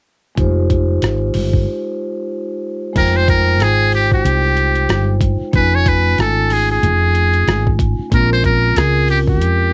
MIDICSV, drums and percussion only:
0, 0, Header, 1, 2, 480
1, 0, Start_track
1, 0, Key_signature, -4, "minor"
1, 0, Tempo, 645161
1, 279, Time_signature, 4, 2, 24, 8
1, 7241, End_track
2, 0, Start_track
2, 0, Title_t, "Drums"
2, 279, Note_on_c, 9, 36, 92
2, 279, Note_on_c, 9, 42, 72
2, 353, Note_off_c, 9, 42, 0
2, 354, Note_off_c, 9, 36, 0
2, 520, Note_on_c, 9, 36, 84
2, 521, Note_on_c, 9, 42, 69
2, 595, Note_off_c, 9, 36, 0
2, 596, Note_off_c, 9, 42, 0
2, 760, Note_on_c, 9, 42, 83
2, 773, Note_on_c, 9, 37, 85
2, 834, Note_off_c, 9, 42, 0
2, 848, Note_off_c, 9, 37, 0
2, 996, Note_on_c, 9, 46, 47
2, 1070, Note_off_c, 9, 46, 0
2, 1141, Note_on_c, 9, 36, 78
2, 1215, Note_off_c, 9, 36, 0
2, 2200, Note_on_c, 9, 36, 104
2, 2201, Note_on_c, 9, 42, 79
2, 2201, Note_on_c, 9, 49, 77
2, 2275, Note_off_c, 9, 36, 0
2, 2275, Note_off_c, 9, 42, 0
2, 2275, Note_off_c, 9, 49, 0
2, 2441, Note_on_c, 9, 36, 90
2, 2443, Note_on_c, 9, 42, 75
2, 2516, Note_off_c, 9, 36, 0
2, 2517, Note_off_c, 9, 42, 0
2, 2680, Note_on_c, 9, 42, 79
2, 2693, Note_on_c, 9, 37, 87
2, 2754, Note_off_c, 9, 42, 0
2, 2768, Note_off_c, 9, 37, 0
2, 2918, Note_on_c, 9, 46, 53
2, 2993, Note_off_c, 9, 46, 0
2, 3061, Note_on_c, 9, 36, 89
2, 3136, Note_off_c, 9, 36, 0
2, 3165, Note_on_c, 9, 42, 92
2, 3240, Note_off_c, 9, 42, 0
2, 3398, Note_on_c, 9, 42, 65
2, 3473, Note_off_c, 9, 42, 0
2, 3537, Note_on_c, 9, 42, 44
2, 3612, Note_off_c, 9, 42, 0
2, 3640, Note_on_c, 9, 42, 70
2, 3648, Note_on_c, 9, 37, 110
2, 3715, Note_off_c, 9, 42, 0
2, 3722, Note_off_c, 9, 37, 0
2, 3875, Note_on_c, 9, 36, 91
2, 3878, Note_on_c, 9, 42, 87
2, 3949, Note_off_c, 9, 36, 0
2, 3953, Note_off_c, 9, 42, 0
2, 4116, Note_on_c, 9, 42, 76
2, 4118, Note_on_c, 9, 36, 107
2, 4191, Note_off_c, 9, 42, 0
2, 4192, Note_off_c, 9, 36, 0
2, 4360, Note_on_c, 9, 36, 90
2, 4361, Note_on_c, 9, 42, 79
2, 4434, Note_off_c, 9, 36, 0
2, 4435, Note_off_c, 9, 42, 0
2, 4600, Note_on_c, 9, 42, 78
2, 4613, Note_on_c, 9, 37, 89
2, 4674, Note_off_c, 9, 42, 0
2, 4688, Note_off_c, 9, 37, 0
2, 4838, Note_on_c, 9, 46, 54
2, 4849, Note_on_c, 9, 37, 35
2, 4913, Note_off_c, 9, 46, 0
2, 4923, Note_off_c, 9, 37, 0
2, 5083, Note_on_c, 9, 42, 88
2, 5158, Note_off_c, 9, 42, 0
2, 5318, Note_on_c, 9, 42, 74
2, 5393, Note_off_c, 9, 42, 0
2, 5458, Note_on_c, 9, 42, 44
2, 5532, Note_off_c, 9, 42, 0
2, 5562, Note_on_c, 9, 42, 77
2, 5569, Note_on_c, 9, 37, 108
2, 5636, Note_off_c, 9, 42, 0
2, 5644, Note_off_c, 9, 37, 0
2, 5705, Note_on_c, 9, 36, 94
2, 5779, Note_off_c, 9, 36, 0
2, 5796, Note_on_c, 9, 36, 93
2, 5801, Note_on_c, 9, 42, 79
2, 5870, Note_off_c, 9, 36, 0
2, 5875, Note_off_c, 9, 42, 0
2, 6039, Note_on_c, 9, 36, 110
2, 6039, Note_on_c, 9, 42, 84
2, 6113, Note_off_c, 9, 36, 0
2, 6114, Note_off_c, 9, 42, 0
2, 6280, Note_on_c, 9, 36, 94
2, 6281, Note_on_c, 9, 42, 75
2, 6354, Note_off_c, 9, 36, 0
2, 6356, Note_off_c, 9, 42, 0
2, 6520, Note_on_c, 9, 42, 86
2, 6534, Note_on_c, 9, 37, 102
2, 6595, Note_off_c, 9, 42, 0
2, 6608, Note_off_c, 9, 37, 0
2, 6758, Note_on_c, 9, 46, 51
2, 6833, Note_off_c, 9, 46, 0
2, 6901, Note_on_c, 9, 36, 91
2, 6975, Note_off_c, 9, 36, 0
2, 7004, Note_on_c, 9, 42, 93
2, 7079, Note_off_c, 9, 42, 0
2, 7241, End_track
0, 0, End_of_file